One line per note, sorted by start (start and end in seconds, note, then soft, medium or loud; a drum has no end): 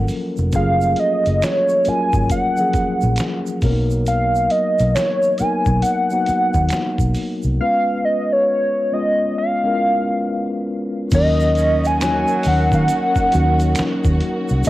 0.00 0.18 F3 medium
0.00 0.53 F#3 medium
0.00 0.60 A#3 medium
0.00 0.54 C#4 medium
0.00 0.55 F4 medium
0.00 3.63 A4 medium
0.00 1.88 A#4 medium
0.08 open hi-hat soft
0.08 shaker soft
0.37 0.54 F1 medium
0.37 shaker soft
0.52 0.94 F#1 loud
0.52 1.56 F#3 medium
0.52 0.61 A3 soft
0.52 1.57 C#4 medium
0.52 1.57 F4 medium
0.52 1.58 G#4 medium
0.52 1.01 F5 medium
0.52 kick medium
0.52 closed hi-hat medium
0.52 shaker medium
0.60 1.60 A#3 medium
0.81 shaker soft
0.96 1.45 D#5 medium
0.96 closed hi-hat medium
1.26 1.41 F#1 medium
1.26 closed hi-hat soft
1.26 shaker soft
1.42 1.90 C#5 medium
1.42 finger snap medium
1.42 snare loud
1.42 closed hi-hat medium
1.42 shaker medium
1.69 shaker soft
1.85 2.37 F#3 medium
1.85 2.37 A#3 medium
1.85 2.38 C#4 medium
1.85 2.38 F4 medium
1.85 2.38 A#4 medium
1.85 2.31 G#5 loud
1.85 muted fingered electric bass stroke soft
1.85 closed hi-hat medium
1.85 shaker soft
2.13 2.28 G#1 medium
2.13 kick medium
2.13 shaker soft
2.29 3.59 F#5 loud
2.29 kick medium
2.29 closed hi-hat medium
2.29 shaker medium
2.57 3.63 F3 medium
2.57 3.61 F#3 medium
2.57 3.62 A#3 medium
2.57 3.63 C#4 medium
2.57 3.63 G#4 medium
2.57 shaker soft
2.73 muted fingered electric bass stroke soft
2.73 kick medium
2.73 closed hi-hat medium
2.73 shaker soft
3.01 3.17 A#1 medium
3.01 shaker soft
3.16 finger snap medium
3.16 closed hi-hat medium
3.16 shaker medium
3.20 finger snap medium
3.20 snare loud
3.46 shaker soft
3.62 4.47 B1 medium
3.62 5.05 F#3 medium
3.62 5.06 A#3 medium
3.62 5.06 B3 medium
3.62 3.71 C#4 medium
3.62 5.06 A#4 medium
3.62 kick medium
3.62 open hi-hat soft
3.62 shaker soft
3.71 5.10 D#4 medium
3.90 shaker soft
4.06 4.52 F5 loud
4.06 closed hi-hat medium
4.06 shaker medium
4.35 shaker soft
4.50 4.96 D#5 medium
4.50 closed hi-hat medium
4.79 4.94 B1 medium
4.79 closed hi-hat soft
4.79 shaker soft
4.95 5.39 C#5 loud
4.95 finger snap medium
4.95 snare loud
4.95 closed hi-hat medium
4.95 shaker medium
5.23 shaker soft
5.37 5.90 F#3 medium
5.37 5.91 A#3 medium
5.37 5.91 B3 medium
5.37 5.91 D#4 medium
5.37 5.82 G#5 loud
5.37 muted fingered electric bass stroke soft
5.37 closed hi-hat medium
5.37 shaker soft
5.42 5.92 A#4 medium
5.66 5.81 B1 medium
5.66 kick medium
5.66 shaker soft
5.82 7.11 F#5 loud
5.82 closed hi-hat medium
5.82 shaker medium
6.10 7.24 F#3 medium
6.10 7.24 A#3 medium
6.10 7.24 B3 medium
6.10 7.25 D#4 medium
6.10 7.25 F#4 medium
6.10 shaker soft
6.26 muted fingered electric bass stroke soft
6.26 closed hi-hat medium
6.26 shaker soft
6.54 6.70 D#2 medium
6.54 kick medium
6.54 shaker soft
6.69 finger snap medium
6.69 muted fingered electric bass stroke soft
6.69 closed hi-hat medium
6.69 shaker medium
6.73 finger snap medium
6.73 snare loud
6.99 7.14 B1 medium
6.99 kick medium
6.99 shaker soft
7.15 open hi-hat medium
7.15 shaker soft
7.42 7.58 C2 medium
7.42 shaker soft
7.60 8.63 G#3 medium
7.60 8.63 B3 medium
7.60 8.63 C#4 medium
7.60 8.64 F4 medium
7.60 8.64 B4 medium
7.60 8.06 F5 loud
8.05 8.34 D#5 medium
8.32 8.95 C#5 medium
8.92 9.43 G#3 medium
8.92 9.44 B3 medium
8.92 9.44 C#4 medium
8.92 9.44 F4 medium
8.92 9.45 C#5 medium
8.92 9.36 D#5 medium
9.38 10.65 F5 medium
9.63 10.76 G#3 medium
9.63 10.77 B3 medium
9.63 10.77 C#4 medium
9.63 9.69 E4 soft
9.63 10.78 A#4 medium
9.72 10.81 F4 medium
11.11 12.24 D#2 loud
11.11 14.61 D#3 medium
11.11 11.84 F#3 medium
11.11 11.85 A#3 medium
11.11 14.61 C#4 medium
11.11 11.85 C#4 medium
11.11 11.85 D#4 medium
11.11 14.70 F#4 medium
11.11 11.88 D#5 loud
11.11 kick medium
11.11 closed hi-hat medium
11.11 crash medium
11.11 shaker medium
11.15 11.86 A#4 medium
11.40 shaker soft
11.55 11.91 C#3 medium
11.55 11.91 C#4 medium
11.55 closed hi-hat medium
11.55 shaker soft
11.84 12.49 G#5 loud
11.84 closed hi-hat soft
11.84 shaker soft
12.00 13.28 F#3 loud
12.00 13.04 F#3 medium
12.00 13.04 A#3 medium
12.00 13.04 C#4 medium
12.00 13.04 D#4 medium
12.00 13.29 F#4 medium
12.00 13.05 C#5 medium
12.00 finger snap medium
12.00 snare loud
12.00 closed hi-hat medium
12.00 shaker medium
12.27 shaker soft
12.43 12.70 D#2 medium
12.43 open hi-hat soft
12.43 shaker medium
12.47 12.73 F#5 loud
12.72 12.87 D#3 medium
12.72 14.18 F#5 loud
12.72 kick medium
12.72 closed hi-hat soft
12.72 shaker soft
12.88 closed hi-hat medium
12.88 shaker medium
13.15 kick medium
13.15 shaker soft
13.32 13.74 D#2 medium
13.32 14.36 F#3 medium
13.32 14.36 A#3 medium
13.32 14.37 C#4 medium
13.32 14.37 D#4 medium
13.32 14.37 F#4 medium
13.32 closed hi-hat medium
13.32 shaker soft
13.60 closed hi-hat soft
13.60 shaker soft
13.75 finger snap medium
13.75 closed hi-hat medium
13.75 shaker medium
13.79 finger snap medium
13.79 snare loud
14.04 14.20 D#2 medium
14.04 kick loud
14.04 shaker soft
14.20 closed hi-hat medium
14.49 14.65 C2 medium
14.49 shaker soft
14.64 14.70 C#3 medium
14.64 14.70 G#3 medium
14.64 14.70 B3 medium
14.64 closed hi-hat medium
14.64 shaker medium